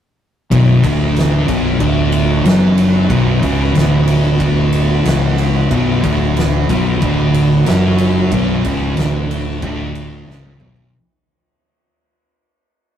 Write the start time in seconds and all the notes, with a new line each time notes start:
0.51 B0 B1 B2 B3 F#4 B4, kick, ride
0.83 D1 D2 D3, kick, ride
1.16 snare, ride
1.48 B0 B1 B2, kick, ride
1.79 D1 D2 D3, kick, ride
2.12 ride
2.44 F#1 F#2 F#3, snare, ride
2.78 ride
3.09 B0 B1 B2, kick, ride
3.42 C#1 C#2 C#3, kick, ride
3.75 D1 D2 D3, snare, ride
4.08 ride
4.40 kick, ride
4.73 ride
5.05 C#1 C#2 C#3, snare, ride
5.38 ride
5.70 B0 B1 B2, kick, ride
6.04 D1 D2 D3, kick, ride
6.37 snare, ride
6.69 B0 B1 B2, kick, ride
7.01 D1 D2 D3, kick, ride
7.34 ride
7.66 F#1 F#2 F#3, snare, ride
7.98 ride
8.31 B0 B1 B2, kick, ride
8.65 C#1 C#2 C#3, kick, ride
8.97 D1 D2 D3, snare, ride
9.31 ride
9.62 D1 D2 D3, kick, ride
9.95 ride
10.28 C#1 C#2 C#3, snare
10.44 high tom
10.60 B0 B1 B2, mid tom
10.76 floor tom